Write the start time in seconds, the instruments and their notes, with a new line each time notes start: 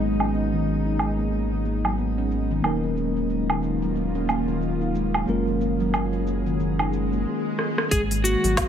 Already playing: sub bass G#1, tine electric piano G#3 D#4 F#4 B5, synth drone G#3 D#4, singing bowl D#5
0.00 steel tongue drum B3, shaker
0.20 steel tongue drum C#4, low woodblock, shaker
0.33 steel tongue drum B3, shaker
0.53 steel tongue drum D#3, shaker
0.66 steel tongue drum D#3, shaker
0.86 steel tongue drum D#4, shaker
0.99 steel tongue drum G#3, low woodblock, shaker
1.19 steel tongue drum A#3, shaker
1.32 steel tongue drum G#3, shaker
1.52 steel tongue drum D#3, shaker
1.65 steel tongue drum A#3, shaker
1.85 steel tongue drum F#3, low woodblock, shaker
1.98 steel tongue drum B3, shaker
2.18 steel tongue drum C#4, shaker
2.31 steel tongue drum B3, shaker
2.51 steel tongue drum D#3, shaker
2.62 sub bass D#1, steel tongue drum D#3, synth drone D#3 A#3 F4, tine electric piano F#3 A#3 C#4 D#4 A#4, low woodblock, shaker
2.84 steel tongue drum D#4, shaker
2.97 steel tongue drum G#3, shaker
3.16 steel tongue drum A#3, shaker
3.30 steel tongue drum G#3, shaker
3.49 steel tongue drum D#3, low woodblock, shaker
3.63 steel tongue drum A#3, shaker
3.82 steel tongue drum F#3, shaker
3.96 steel tongue drum A#3, shaker
4.15 steel tongue drum C#4, shaker
4.28 steel tongue drum A#3, low woodblock, shaker
4.48 steel tongue drum D#3, shaker
4.61 steel tongue drum D#3, shaker
4.81 steel tongue drum D#4, shaker
4.95 steel tongue drum G#3, shaker
5.14 steel tongue drum A#3, low woodblock, shaker
5.26 sub bass F#1, tine electric piano F#3 A#3 C#4 F4, synth drone F#3 C#4 G#4, steel tongue drum G#3, shaker
5.30 tine electric piano A#4
5.47 steel tongue drum D#3, shaker
5.61 steel tongue drum A#3, shaker
5.80 steel tongue drum F#3, shaker
5.94 steel tongue drum A#3, low woodblock, shaker
6.13 steel tongue drum C#4, shaker
6.27 steel tongue drum A#3, shaker
6.46 steel tongue drum D#3, shaker
6.59 steel tongue drum D#3, swell, shaker
6.79 steel tongue drum D#4, low woodblock, shaker
6.92 steel tongue drum G#3, shaker
7.12 steel tongue drum A#3, shaker
7.59 cross-stick
7.78 cross-stick
7.91 sub bass G#1, steel tongue drum G#3, synth drone G#3 D#4 B4, electric slide guitar G#4, kick, open hi-hat, shaker
8.11 steel tongue drum D#3, open hi-hat, shaker
8.24 steel tongue drum A#3, electric slide guitar F#4, shaker
8.44 sub bass G#1, steel tongue drum F#3, open hi-hat, shaker
8.57 steel tongue drum B3, kick, snare, open hi-hat, shaker